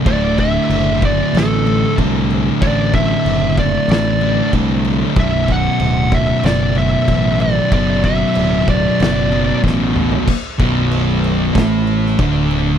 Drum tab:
CC |x-x-x-x-x-x-x-x-|x-x-x-x-x-x-x-x-|x-x-x-x-x-x-x-x-|x-x-x-x-x-x-----|
SD |--------o-------|--------o-------|--------o-------|--------o---o---|
T2 |----------------|----------------|----------------|--------------o-|
FT |----------------|----------------|----------------|---------------o|
BD |o-o---o-----o---|o-o---o-----o---|o-o---o-----o---|o-o---o-----o---|

CC |x-x-x-x-x-x-x-x-|
SD |--------o--o----|
T2 |----------------|
FT |----------------|
BD |o-o-----o---o---|